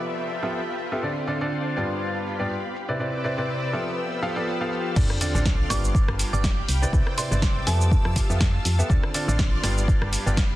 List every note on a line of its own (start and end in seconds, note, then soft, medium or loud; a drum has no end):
0.00 0.39 F3 medium
0.00 0.39 B3 medium
0.00 1.03 B3 medium
0.00 0.39 F4 medium
0.00 1.02 F4 medium
0.00 2.31 F4 medium
0.00 0.39 G4 medium
0.00 0.39 A4 medium
0.00 0.29 B4 medium
0.00 0.29 D5 medium
0.00 0.39 E5 medium
0.00 1.01 E5 medium
0.00 1.43 E5 medium
0.00 1.02 G5 medium
0.00 1.02 A5 medium
0.00 1.02 B5 medium
0.05 shaker soft
0.19 shaker soft
0.30 shaker medium
0.36 1.43 G4 medium
0.36 1.43 A4 medium
0.43 0.59 F3 medium
0.43 0.59 B3 medium
0.43 0.59 F4 medium
0.43 0.59 G4 medium
0.43 0.59 A4 medium
0.43 0.59 E5 medium
0.43 shaker soft
0.54 shaker soft
0.68 shaker soft
0.79 shaker medium
0.92 1.00 B3 medium
0.92 1.00 F4 medium
0.92 1.00 G4 medium
0.92 1.00 A4 medium
0.92 1.00 E5 medium
0.92 shaker soft
1.03 1.24 D3 medium
1.03 1.24 C4 medium
1.03 2.01 C4 medium
1.03 2.00 D4 medium
1.03 1.24 F4 medium
1.03 2.73 F4 medium
1.03 1.24 A4 medium
1.03 2.00 C5 medium
1.03 1.24 D5 medium
1.03 shaker soft
1.17 shaker soft
1.27 1.38 D3 medium
1.27 1.38 C4 medium
1.27 1.38 F4 medium
1.27 1.38 A4 medium
1.27 1.38 D5 medium
1.27 shaker medium
1.41 1.74 D3 medium
1.41 1.74 C4 medium
1.41 1.74 F4 medium
1.41 1.74 A4 medium
1.41 1.74 D5 medium
1.41 shaker soft
1.48 2.31 D5 medium
1.53 shaker soft
1.67 shaker soft
1.77 2.36 G2 medium
1.77 2.36 B3 medium
1.77 2.36 F4 medium
1.77 2.36 G4 medium
1.77 2.36 D5 medium
1.77 shaker medium
1.91 shaker soft
2.01 2.75 B3 medium
2.01 2.74 G4 medium
2.01 2.74 B5 medium
2.01 shaker soft
2.16 shaker soft
2.27 shaker medium
2.35 3.15 G4 medium
2.35 2.75 F5 medium
2.39 2.56 G2 medium
2.39 2.56 B3 medium
2.39 2.56 F4 medium
2.39 2.56 G4 medium
2.39 2.56 D5 medium
2.39 shaker soft
2.51 shaker soft
2.65 shaker soft
2.75 3.72 C4 medium
2.75 3.73 C4 medium
2.75 3.72 B4 medium
2.75 3.72 D6 medium
2.75 4.94 E6 medium
2.75 shaker medium
2.89 2.97 C3 medium
2.89 2.97 C4 medium
2.89 2.97 E4 medium
2.89 2.97 B4 medium
2.89 2.97 D5 medium
2.89 shaker soft
3.00 3.21 C3 medium
3.00 3.21 C4 medium
3.00 3.21 E4 medium
3.00 3.21 B4 medium
3.00 3.21 D5 medium
3.00 shaker soft
3.09 4.23 B4 medium
3.09 4.23 D5 medium
3.14 shaker soft
3.20 4.96 G5 medium
3.24 3.35 C3 medium
3.24 3.35 C4 medium
3.24 3.35 E4 medium
3.24 3.35 B4 medium
3.24 3.35 D5 medium
3.24 shaker medium
3.38 3.71 C3 medium
3.38 3.71 C4 medium
3.38 3.71 E4 medium
3.38 3.71 B4 medium
3.38 3.71 D5 medium
3.38 shaker soft
3.50 shaker soft
3.63 shaker soft
3.73 4.20 F3 medium
3.73 4.20 B3 medium
3.73 4.96 B3 medium
3.73 4.20 F4 medium
3.73 4.95 F4 medium
3.73 4.20 G4 medium
3.73 4.20 A4 medium
3.73 4.20 E5 medium
3.73 4.95 G5 medium
3.73 4.95 A5 medium
3.73 4.95 B5 medium
3.73 shaker medium
3.88 5.37 F4 medium
3.88 shaker soft
3.99 shaker soft
4.12 shaker soft
4.22 4.34 F3 medium
4.22 4.34 B3 medium
4.22 4.34 F4 medium
4.22 4.34 G4 medium
4.22 4.34 A4 medium
4.22 4.34 F5 loud
4.22 shaker medium
4.30 5.37 G4 medium
4.30 5.37 A4 medium
4.36 4.57 F3 medium
4.36 4.57 B3 medium
4.36 4.57 F4 medium
4.36 4.57 G4 medium
4.36 4.57 A4 medium
4.36 4.57 D5 medium
4.36 shaker soft
4.48 shaker soft
4.61 4.94 F3 medium
4.61 4.94 B3 medium
4.61 4.94 F4 medium
4.61 4.94 G4 medium
4.61 4.94 A4 medium
4.61 4.94 F5 medium
4.61 shaker soft
4.73 shaker medium
4.86 shaker soft
4.96 5.05 D2 loud
4.96 5.18 D3 medium
4.96 5.18 C4 medium
4.96 6.25 D4 medium
4.96 5.18 F4 medium
4.96 5.18 A4 medium
4.96 5.18 D5 medium
4.96 5.94 D5 medium
4.96 5.94 C6 medium
4.96 5.94 F6 medium
4.96 kick loud
4.96 crash loud
4.96 sub drop medium
4.96 shaker soft
5.10 cross-stick medium
5.18 5.31 D3 medium
5.18 5.31 C4 medium
5.18 5.31 F4 medium
5.18 5.31 A4 medium
5.18 5.31 D5 medium
5.18 6.25 F5 medium
5.18 open hi-hat loud
5.18 shaker medium
5.35 5.64 A1 loud
5.35 5.67 D3 medium
5.35 5.67 C4 medium
5.35 5.67 F4 medium
5.35 5.67 A4 medium
5.35 5.67 D5 loud
5.35 shaker soft
5.41 5.95 C5 medium
5.46 kick loud
5.46 snare loud
5.46 shaker soft
5.70 6.01 G1 medium
5.70 6.30 G2 medium
5.70 6.30 B3 medium
5.70 6.30 F4 medium
5.70 6.30 G4 medium
5.70 6.30 D5 medium
5.70 5.83 D6 medium
5.70 cross-stick medium
5.70 snare soft
5.70 open hi-hat loud
5.70 shaker medium
5.85 shaker soft
5.95 6.69 F4 medium
5.95 6.68 G4 medium
5.95 6.68 F5 medium
5.95 7.65 G5 medium
5.95 kick loud
5.95 shaker soft
6.08 6.24 G1 medium
6.08 cross-stick medium
6.19 open hi-hat loud
6.19 shaker medium
6.26 7.09 G5 medium
6.26 7.09 B5 medium
6.33 6.63 G1 loud
6.33 6.49 G2 medium
6.33 6.49 B3 medium
6.33 6.49 F4 medium
6.33 6.49 G4 medium
6.33 6.49 D5 medium
6.33 6.43 D6 medium
6.33 shaker soft
6.44 kick loud
6.44 snare loud
6.44 shaker soft
6.68 6.86 C2 medium
6.68 7.66 C4 medium
6.68 7.66 D6 medium
6.68 8.88 E6 medium
6.68 open hi-hat loud
6.68 shaker medium
6.82 6.90 C3 medium
6.82 6.90 C4 medium
6.82 6.90 E4 medium
6.82 6.90 B4 medium
6.82 6.90 D5 medium
6.82 shaker soft
6.93 7.02 C2 loud
6.93 7.14 C3 medium
6.93 7.14 C4 medium
6.93 7.14 E4 medium
6.93 7.14 B4 medium
6.93 7.14 D5 medium
6.93 kick loud
6.93 shaker soft
7.07 cross-stick medium
7.13 8.16 D5 medium
7.13 8.90 D6 medium
7.18 7.28 C3 medium
7.18 7.28 C4 medium
7.18 7.28 E4 medium
7.18 7.28 B4 medium
7.18 7.28 D5 medium
7.18 7.65 C6 medium
7.18 open hi-hat loud
7.18 shaker medium
7.31 7.61 G1 loud
7.31 7.64 C3 medium
7.31 7.64 C4 medium
7.31 7.64 E4 medium
7.31 7.64 B4 medium
7.31 7.64 D5 loud
7.31 shaker soft
7.42 kick loud
7.42 snare loud
7.42 shaker soft
7.67 7.98 F2 medium
7.67 8.26 F3 medium
7.67 8.26 B3 medium
7.67 8.89 F4 medium
7.67 8.26 G4 medium
7.67 9.30 G4 medium
7.67 8.26 A4 medium
7.67 8.26 E5 medium
7.67 8.05 A5 loud
7.67 8.89 A5 medium
7.67 open hi-hat loud
7.67 shaker medium
7.81 shaker soft
7.91 kick loud
7.91 shaker soft
8.05 8.21 F2 medium
8.05 cross-stick medium
8.16 kick medium
8.16 open hi-hat loud
8.16 shaker medium
8.23 9.30 A5 medium
8.30 8.59 F2 loud
8.30 8.46 F3 medium
8.30 8.46 B3 medium
8.30 8.46 G4 medium
8.30 8.46 A4 medium
8.30 8.46 E5 medium
8.30 shaker soft
8.41 kick loud
8.41 snare loud
8.41 shaker soft
8.65 8.83 F2 loud
8.65 open hi-hat loud
8.65 shaker medium
8.79 8.87 B3 medium
8.79 8.87 G4 medium
8.79 8.87 A4 medium
8.79 8.87 E5 medium
8.79 shaker soft
8.90 8.99 D2 loud
8.90 9.11 D3 medium
8.90 9.11 C4 medium
8.90 9.11 F4 medium
8.90 10.18 F4 medium
8.90 9.11 A4 medium
8.90 9.11 D5 medium
8.90 9.87 D5 medium
8.90 9.87 C6 medium
8.90 9.87 F6 medium
8.90 kick loud
8.90 shaker soft
9.03 cross-stick medium
9.14 9.25 D3 medium
9.14 9.25 C4 medium
9.14 9.25 F4 medium
9.14 9.25 A4 medium
9.14 9.25 D5 medium
9.14 open hi-hat loud
9.14 shaker medium
9.19 10.18 D5 medium
9.28 9.58 A1 loud
9.28 9.61 D3 medium
9.28 9.61 C4 medium
9.28 9.61 F4 medium
9.28 9.61 A4 medium
9.28 9.61 D5 loud
9.28 shaker soft
9.34 9.88 C6 medium
9.39 kick loud
9.39 snare loud
9.39 shaker soft
9.63 9.95 G1 medium
9.63 10.23 G2 medium
9.63 10.23 B3 medium
9.63 10.23 F4 medium
9.63 10.23 G4 medium
9.63 10.23 D5 loud
9.63 cross-stick medium
9.63 snare soft
9.63 open hi-hat loud
9.63 shaker medium
9.78 shaker soft
9.88 10.56 G4 medium
9.88 10.56 F5 medium
9.88 10.56 B5 medium
9.88 kick loud
9.88 shaker soft
10.02 10.17 G1 medium
10.02 cross-stick medium
10.13 open hi-hat loud
10.13 shaker medium
10.22 10.56 F5 medium
10.22 10.56 B5 medium
10.26 10.56 G1 loud
10.26 10.43 G2 medium
10.26 10.43 B3 medium
10.26 10.43 F4 medium
10.26 10.43 G4 medium
10.26 10.43 D5 medium
10.26 shaker soft
10.37 kick loud
10.37 snare loud
10.37 shaker soft